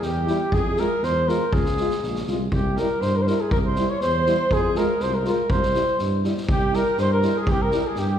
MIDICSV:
0, 0, Header, 1, 7, 480
1, 0, Start_track
1, 0, Tempo, 495868
1, 514, Time_signature, 2, 2, 24, 8
1, 7927, End_track
2, 0, Start_track
2, 0, Title_t, "Alto saxophone"
2, 0, Program_c, 0, 65
2, 24, Note_on_c, 0, 67, 76
2, 511, Note_on_c, 0, 68, 86
2, 526, Note_off_c, 0, 67, 0
2, 777, Note_on_c, 0, 70, 74
2, 792, Note_off_c, 0, 68, 0
2, 1005, Note_on_c, 0, 72, 78
2, 1020, Note_off_c, 0, 70, 0
2, 1259, Note_on_c, 0, 70, 68
2, 1274, Note_off_c, 0, 72, 0
2, 1495, Note_on_c, 0, 68, 75
2, 1510, Note_off_c, 0, 70, 0
2, 2208, Note_off_c, 0, 68, 0
2, 2444, Note_on_c, 0, 67, 73
2, 2678, Note_on_c, 0, 70, 62
2, 2692, Note_off_c, 0, 67, 0
2, 2910, Note_on_c, 0, 72, 72
2, 2924, Note_off_c, 0, 70, 0
2, 3049, Note_on_c, 0, 70, 65
2, 3063, Note_off_c, 0, 72, 0
2, 3113, Note_on_c, 0, 72, 60
2, 3128, Note_off_c, 0, 70, 0
2, 3170, Note_on_c, 0, 70, 61
2, 3184, Note_off_c, 0, 72, 0
2, 3298, Note_on_c, 0, 68, 67
2, 3312, Note_off_c, 0, 70, 0
2, 3403, Note_off_c, 0, 68, 0
2, 3409, Note_on_c, 0, 70, 77
2, 3463, Note_off_c, 0, 70, 0
2, 3545, Note_on_c, 0, 72, 68
2, 3772, Note_on_c, 0, 73, 73
2, 3787, Note_off_c, 0, 72, 0
2, 3875, Note_off_c, 0, 73, 0
2, 3881, Note_on_c, 0, 72, 84
2, 4393, Note_on_c, 0, 68, 88
2, 4407, Note_off_c, 0, 72, 0
2, 4632, Note_on_c, 0, 70, 72
2, 4646, Note_off_c, 0, 68, 0
2, 4874, Note_on_c, 0, 72, 72
2, 4889, Note_off_c, 0, 70, 0
2, 4993, Note_on_c, 0, 70, 64
2, 5008, Note_off_c, 0, 72, 0
2, 5094, Note_off_c, 0, 70, 0
2, 5122, Note_on_c, 0, 70, 68
2, 5362, Note_on_c, 0, 72, 81
2, 5376, Note_off_c, 0, 70, 0
2, 5820, Note_off_c, 0, 72, 0
2, 6297, Note_on_c, 0, 67, 85
2, 6539, Note_on_c, 0, 70, 77
2, 6553, Note_off_c, 0, 67, 0
2, 6763, Note_off_c, 0, 70, 0
2, 6769, Note_on_c, 0, 72, 81
2, 6880, Note_off_c, 0, 72, 0
2, 6890, Note_on_c, 0, 70, 71
2, 7109, Note_off_c, 0, 70, 0
2, 7128, Note_on_c, 0, 68, 80
2, 7249, Note_on_c, 0, 67, 81
2, 7263, Note_off_c, 0, 68, 0
2, 7378, Note_on_c, 0, 70, 76
2, 7392, Note_off_c, 0, 67, 0
2, 7605, Note_on_c, 0, 68, 69
2, 7619, Note_off_c, 0, 70, 0
2, 7739, Note_on_c, 0, 67, 66
2, 7753, Note_off_c, 0, 68, 0
2, 7927, Note_off_c, 0, 67, 0
2, 7927, End_track
3, 0, Start_track
3, 0, Title_t, "Flugelhorn"
3, 0, Program_c, 1, 56
3, 39, Note_on_c, 1, 67, 76
3, 521, Note_on_c, 1, 68, 92
3, 535, Note_off_c, 1, 67, 0
3, 769, Note_on_c, 1, 70, 82
3, 783, Note_off_c, 1, 68, 0
3, 1009, Note_on_c, 1, 72, 83
3, 1023, Note_off_c, 1, 70, 0
3, 1240, Note_on_c, 1, 70, 79
3, 1255, Note_off_c, 1, 72, 0
3, 1484, Note_on_c, 1, 68, 78
3, 1499, Note_off_c, 1, 70, 0
3, 2203, Note_off_c, 1, 68, 0
3, 2440, Note_on_c, 1, 67, 77
3, 2703, Note_on_c, 1, 70, 76
3, 2718, Note_off_c, 1, 67, 0
3, 2930, Note_on_c, 1, 72, 73
3, 2944, Note_off_c, 1, 70, 0
3, 3067, Note_on_c, 1, 70, 71
3, 3082, Note_off_c, 1, 72, 0
3, 3118, Note_on_c, 1, 72, 65
3, 3132, Note_off_c, 1, 70, 0
3, 3169, Note_on_c, 1, 70, 76
3, 3183, Note_off_c, 1, 72, 0
3, 3303, Note_on_c, 1, 68, 77
3, 3317, Note_off_c, 1, 70, 0
3, 3401, Note_off_c, 1, 68, 0
3, 3407, Note_on_c, 1, 70, 80
3, 3462, Note_off_c, 1, 70, 0
3, 3537, Note_on_c, 1, 72, 73
3, 3776, Note_on_c, 1, 73, 73
3, 3790, Note_off_c, 1, 72, 0
3, 3886, Note_off_c, 1, 73, 0
3, 3894, Note_on_c, 1, 72, 92
3, 4383, Note_on_c, 1, 68, 88
3, 4398, Note_off_c, 1, 72, 0
3, 4622, Note_on_c, 1, 70, 80
3, 4636, Note_off_c, 1, 68, 0
3, 4857, Note_on_c, 1, 72, 81
3, 4871, Note_off_c, 1, 70, 0
3, 4980, Note_on_c, 1, 70, 66
3, 4994, Note_off_c, 1, 72, 0
3, 5088, Note_off_c, 1, 70, 0
3, 5098, Note_on_c, 1, 70, 83
3, 5334, Note_on_c, 1, 72, 90
3, 5348, Note_off_c, 1, 70, 0
3, 5806, Note_off_c, 1, 72, 0
3, 6294, Note_on_c, 1, 67, 92
3, 6536, Note_on_c, 1, 70, 93
3, 6550, Note_off_c, 1, 67, 0
3, 6766, Note_off_c, 1, 70, 0
3, 6781, Note_on_c, 1, 72, 85
3, 6886, Note_off_c, 1, 72, 0
3, 6907, Note_on_c, 1, 70, 84
3, 7118, Note_off_c, 1, 70, 0
3, 7156, Note_on_c, 1, 68, 78
3, 7274, Note_on_c, 1, 67, 90
3, 7288, Note_off_c, 1, 68, 0
3, 7377, Note_on_c, 1, 70, 75
3, 7392, Note_off_c, 1, 67, 0
3, 7620, Note_on_c, 1, 68, 78
3, 7635, Note_off_c, 1, 70, 0
3, 7730, Note_on_c, 1, 67, 75
3, 7744, Note_off_c, 1, 68, 0
3, 7927, Note_off_c, 1, 67, 0
3, 7927, End_track
4, 0, Start_track
4, 0, Title_t, "French horn"
4, 0, Program_c, 2, 60
4, 271, Note_on_c, 2, 64, 71
4, 368, Note_off_c, 2, 64, 0
4, 754, Note_on_c, 2, 65, 53
4, 851, Note_off_c, 2, 65, 0
4, 1240, Note_on_c, 2, 65, 66
4, 1336, Note_off_c, 2, 65, 0
4, 1732, Note_on_c, 2, 65, 58
4, 1826, Note_off_c, 2, 65, 0
4, 2216, Note_on_c, 2, 65, 55
4, 2309, Note_off_c, 2, 65, 0
4, 2698, Note_on_c, 2, 64, 51
4, 2790, Note_off_c, 2, 64, 0
4, 3172, Note_on_c, 2, 64, 61
4, 3266, Note_off_c, 2, 64, 0
4, 3669, Note_on_c, 2, 64, 59
4, 3759, Note_off_c, 2, 64, 0
4, 4138, Note_on_c, 2, 64, 65
4, 4230, Note_off_c, 2, 64, 0
4, 4615, Note_on_c, 2, 65, 67
4, 4708, Note_off_c, 2, 65, 0
4, 5090, Note_on_c, 2, 65, 68
4, 5184, Note_off_c, 2, 65, 0
4, 5560, Note_on_c, 2, 64, 47
4, 5656, Note_off_c, 2, 64, 0
4, 6046, Note_on_c, 2, 64, 49
4, 6141, Note_off_c, 2, 64, 0
4, 6520, Note_on_c, 2, 64, 51
4, 6615, Note_off_c, 2, 64, 0
4, 6999, Note_on_c, 2, 64, 66
4, 7094, Note_off_c, 2, 64, 0
4, 7481, Note_on_c, 2, 64, 61
4, 7576, Note_off_c, 2, 64, 0
4, 7927, End_track
5, 0, Start_track
5, 0, Title_t, "Euphonium"
5, 0, Program_c, 3, 58
5, 269, Note_on_c, 3, 55, 52
5, 366, Note_off_c, 3, 55, 0
5, 758, Note_on_c, 3, 56, 63
5, 854, Note_off_c, 3, 56, 0
5, 1242, Note_on_c, 3, 56, 56
5, 1337, Note_off_c, 3, 56, 0
5, 1726, Note_on_c, 3, 56, 57
5, 1821, Note_off_c, 3, 56, 0
5, 2204, Note_on_c, 3, 56, 50
5, 2299, Note_off_c, 3, 56, 0
5, 2698, Note_on_c, 3, 55, 58
5, 2791, Note_off_c, 3, 55, 0
5, 3171, Note_on_c, 3, 55, 55
5, 3265, Note_off_c, 3, 55, 0
5, 3660, Note_on_c, 3, 55, 62
5, 3752, Note_off_c, 3, 55, 0
5, 4132, Note_on_c, 3, 55, 60
5, 4226, Note_off_c, 3, 55, 0
5, 4621, Note_on_c, 3, 56, 70
5, 4713, Note_off_c, 3, 56, 0
5, 5088, Note_on_c, 3, 56, 56
5, 5183, Note_off_c, 3, 56, 0
5, 5568, Note_on_c, 3, 55, 59
5, 5662, Note_off_c, 3, 55, 0
5, 6036, Note_on_c, 3, 55, 57
5, 6132, Note_off_c, 3, 55, 0
5, 6522, Note_on_c, 3, 55, 56
5, 6617, Note_off_c, 3, 55, 0
5, 6993, Note_on_c, 3, 55, 60
5, 7089, Note_off_c, 3, 55, 0
5, 7469, Note_on_c, 3, 55, 65
5, 7566, Note_off_c, 3, 55, 0
5, 7927, End_track
6, 0, Start_track
6, 0, Title_t, "Tuba"
6, 0, Program_c, 4, 58
6, 20, Note_on_c, 4, 40, 77
6, 289, Note_off_c, 4, 40, 0
6, 500, Note_on_c, 4, 41, 87
6, 769, Note_off_c, 4, 41, 0
6, 990, Note_on_c, 4, 40, 83
6, 1257, Note_off_c, 4, 40, 0
6, 1476, Note_on_c, 4, 37, 84
6, 1741, Note_off_c, 4, 37, 0
6, 1960, Note_on_c, 4, 34, 72
6, 2176, Note_off_c, 4, 34, 0
6, 2199, Note_on_c, 4, 36, 76
6, 2416, Note_off_c, 4, 36, 0
6, 2439, Note_on_c, 4, 36, 85
6, 2704, Note_off_c, 4, 36, 0
6, 2924, Note_on_c, 4, 43, 81
6, 3187, Note_off_c, 4, 43, 0
6, 3403, Note_on_c, 4, 36, 87
6, 3667, Note_off_c, 4, 36, 0
6, 3896, Note_on_c, 4, 40, 84
6, 4156, Note_off_c, 4, 40, 0
6, 4379, Note_on_c, 4, 41, 86
6, 4638, Note_off_c, 4, 41, 0
6, 4858, Note_on_c, 4, 36, 89
6, 5117, Note_off_c, 4, 36, 0
6, 5337, Note_on_c, 4, 36, 84
6, 5596, Note_off_c, 4, 36, 0
6, 5808, Note_on_c, 4, 43, 75
6, 6069, Note_off_c, 4, 43, 0
6, 6292, Note_on_c, 4, 36, 79
6, 6552, Note_off_c, 4, 36, 0
6, 6760, Note_on_c, 4, 43, 94
6, 7023, Note_off_c, 4, 43, 0
6, 7229, Note_on_c, 4, 36, 83
6, 7494, Note_off_c, 4, 36, 0
6, 7707, Note_on_c, 4, 43, 81
6, 7927, Note_off_c, 4, 43, 0
6, 7927, End_track
7, 0, Start_track
7, 0, Title_t, "Drums"
7, 18, Note_on_c, 9, 38, 28
7, 114, Note_off_c, 9, 38, 0
7, 262, Note_on_c, 9, 38, 22
7, 359, Note_off_c, 9, 38, 0
7, 504, Note_on_c, 9, 36, 74
7, 601, Note_off_c, 9, 36, 0
7, 739, Note_on_c, 9, 38, 22
7, 836, Note_off_c, 9, 38, 0
7, 993, Note_on_c, 9, 38, 25
7, 1090, Note_off_c, 9, 38, 0
7, 1240, Note_on_c, 9, 38, 28
7, 1337, Note_off_c, 9, 38, 0
7, 1476, Note_on_c, 9, 36, 86
7, 1573, Note_off_c, 9, 36, 0
7, 1600, Note_on_c, 9, 38, 23
7, 1697, Note_off_c, 9, 38, 0
7, 1713, Note_on_c, 9, 38, 31
7, 1810, Note_off_c, 9, 38, 0
7, 1840, Note_on_c, 9, 38, 27
7, 1937, Note_off_c, 9, 38, 0
7, 1963, Note_on_c, 9, 38, 25
7, 2060, Note_off_c, 9, 38, 0
7, 2085, Note_on_c, 9, 38, 28
7, 2181, Note_off_c, 9, 38, 0
7, 2196, Note_on_c, 9, 38, 26
7, 2292, Note_off_c, 9, 38, 0
7, 2438, Note_on_c, 9, 36, 69
7, 2535, Note_off_c, 9, 36, 0
7, 2676, Note_on_c, 9, 38, 27
7, 2773, Note_off_c, 9, 38, 0
7, 2916, Note_on_c, 9, 38, 26
7, 3013, Note_off_c, 9, 38, 0
7, 3163, Note_on_c, 9, 38, 25
7, 3260, Note_off_c, 9, 38, 0
7, 3400, Note_on_c, 9, 36, 77
7, 3497, Note_off_c, 9, 36, 0
7, 3633, Note_on_c, 9, 38, 25
7, 3730, Note_off_c, 9, 38, 0
7, 3876, Note_on_c, 9, 38, 26
7, 3973, Note_off_c, 9, 38, 0
7, 4122, Note_on_c, 9, 38, 26
7, 4219, Note_off_c, 9, 38, 0
7, 4363, Note_on_c, 9, 36, 73
7, 4460, Note_off_c, 9, 36, 0
7, 4598, Note_on_c, 9, 38, 28
7, 4695, Note_off_c, 9, 38, 0
7, 4837, Note_on_c, 9, 38, 30
7, 4934, Note_off_c, 9, 38, 0
7, 5077, Note_on_c, 9, 38, 26
7, 5174, Note_off_c, 9, 38, 0
7, 5321, Note_on_c, 9, 36, 79
7, 5417, Note_off_c, 9, 36, 0
7, 5443, Note_on_c, 9, 38, 23
7, 5540, Note_off_c, 9, 38, 0
7, 5558, Note_on_c, 9, 38, 27
7, 5655, Note_off_c, 9, 38, 0
7, 5793, Note_on_c, 9, 38, 25
7, 5890, Note_off_c, 9, 38, 0
7, 6038, Note_on_c, 9, 38, 25
7, 6135, Note_off_c, 9, 38, 0
7, 6166, Note_on_c, 9, 38, 25
7, 6262, Note_off_c, 9, 38, 0
7, 6278, Note_on_c, 9, 36, 87
7, 6374, Note_off_c, 9, 36, 0
7, 6516, Note_on_c, 9, 38, 30
7, 6613, Note_off_c, 9, 38, 0
7, 6751, Note_on_c, 9, 38, 28
7, 6848, Note_off_c, 9, 38, 0
7, 6988, Note_on_c, 9, 38, 29
7, 7084, Note_off_c, 9, 38, 0
7, 7229, Note_on_c, 9, 36, 79
7, 7326, Note_off_c, 9, 36, 0
7, 7463, Note_on_c, 9, 38, 28
7, 7560, Note_off_c, 9, 38, 0
7, 7699, Note_on_c, 9, 38, 28
7, 7796, Note_off_c, 9, 38, 0
7, 7927, End_track
0, 0, End_of_file